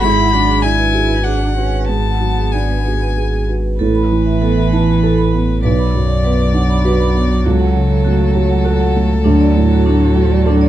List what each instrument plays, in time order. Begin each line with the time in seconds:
0.01 sub bass G#1, felt piano G#2, cello E4, vibraphone G#4, violin B5
0.17 vibraphone F#5
0.32 felt piano F#3, cello D4, vibraphone F#5
0.47 vibraphone G#4
0.62 felt piano D4, cello E4, vibraphone D5, violin G#5
0.77 vibraphone B4
0.93 felt piano F#4, vibraphone G#4
1.08 vibraphone B4
1.24 cello D4, felt piano G#4, violin F#5
1.39 vibraphone G#4
1.57 cello C#4, felt piano F#4, vibraphone B4
1.72 vibraphone B4
1.88 felt piano G#2, cello B3, vibraphone G#4, violin A5
2.06 vibraphone F#5
2.21 felt piano F#3
2.38 vibraphone G#4
2.52 felt piano D4, vibraphone D5, violin G#5
2.69 vibraphone B4
2.85 felt piano F#4, vibraphone G#4
3.01 vibraphone B4
3.17 felt piano G#4
3.32 vibraphone G#4
3.48 felt piano F#4, vibraphone B4
3.64 vibraphone B4
3.79 sub bass A1, felt piano A2, cello E3, vibraphone A4, violin B4
3.95 vibraphone B5
4.12 felt piano E3
4.26 vibraphone E5
4.41 felt piano B3, vibraphone A4
4.57 vibraphone E5
4.73 felt piano E4, vibraphone A5
4.88 vibraphone B5
5.03 vibraphone A4, felt piano A4
5.18 vibraphone B5
5.33 felt piano B3
5.63 sub bass B1, felt piano B1, cello F#3, vibraphone B4, violin D5
5.79 vibraphone B5
5.95 felt piano F#2
6.09 vibraphone D5
6.24 felt piano B3, vibraphone B4
6.39 vibraphone D5
6.54 felt piano D4, vibraphone F#5
6.69 vibraphone B5
6.84 felt piano F#4, vibraphone B4
7.00 vibraphone B5
7.15 felt piano B3
7.44 sub bass C#2, felt piano C#2, vibraphone F#4, violin A4
7.59 vibraphone F#5
7.76 felt piano C#3
7.90 vibraphone A4
8.05 felt piano A3, vibraphone F#4
8.19 vibraphone A4
8.35 felt piano F#4, vibraphone C#5
8.49 vibraphone F#5
8.65 vibraphone F#4, felt piano A4
8.80 vibraphone F#5
8.96 felt piano A3
9.24 sub bass D2, felt piano D2, cello F#3, vibraphone D4
9.40 vibraphone D5
9.56 felt piano A2
9.71 vibraphone F#4
9.86 felt piano A3, vibraphone D4
10.01 vibraphone F#4
10.16 felt piano F#4, vibraphone A4
10.31 vibraphone D5
10.46 vibraphone D4, felt piano A4
10.61 vibraphone D5